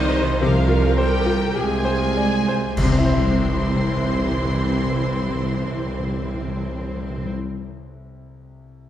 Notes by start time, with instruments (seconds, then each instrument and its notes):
Already playing: double bass section C2, tuba C2, grand piano C2 F4 G4 C5 D5, cello section D#3, violin section D#4 D#5, viola section C5
0.16 grand piano C5
0.42 double bass section C2, tuba C2, grand piano C3, cello section F3, violin section F4 F5, viola section A#4
0.68 grand piano F4
0.97 cello section G3, violin section G4 G5, grand piano C5
1.26 grand piano F4
1.55 double bass section C2, tuba C2, cello section G#3, grand piano G4, viola section G#4, violin section G#4 G#5
1.85 grand piano C5
2.17 grand piano D5
2.48 grand piano C5
2.77 double bass section C2, grand piano C2, tuba C2, timpani C3, viola section E3 E4, cello section C4, violin section C5 C6, concert bass drum, crash
2.84 timpani C3, grand piano C3
2.91 timpani C3, grand piano C4
2.98 timpani C3, grand piano E4
3.05 timpani C3, grand piano C5
3.12 timpani C3, grand piano E5
3.19 timpani C3
3.26 timpani C3
3.33 timpani C3
3.40 timpani C3
3.47 timpani C3
3.55 timpani C3
3.62 timpani C3
3.69 timpani C3
3.76 timpani C3
3.82 timpani C3
3.89 timpani C3
3.97 timpani C3
4.04 timpani C3
4.11 timpani C3
4.17 timpani C3
4.24 timpani C3
4.31 timpani C3
4.38 timpani C3
4.45 timpani C3
4.52 timpani C3
4.58 timpani C3
4.65 timpani C3
4.72 timpani C3
4.79 timpani C3
4.86 timpani C3
4.94 timpani C3
5.01 timpani C3
5.08 timpani C3
5.15 timpani C3
5.22 timpani C3
5.29 timpani C3
5.35 timpani C3
5.42 timpani C3
5.50 timpani C3
5.57 timpani C3
5.64 timpani C3
5.71 timpani C3
5.78 timpani C3
5.85 timpani C3
5.93 timpani C3
6.00 timpani C3
6.07 timpani C3
6.14 timpani C3
6.20 timpani C3
6.27 timpani C3
6.34 timpani C3
6.41 timpani C3
6.48 timpani C3
6.55 timpani C3
6.61 timpani C3
6.68 timpani C3
6.75 timpani C3
6.81 timpani C3
6.88 timpani C3
6.96 timpani C3
7.03 timpani C3
7.10 timpani C3
7.18 timpani C3
7.25 timpani C3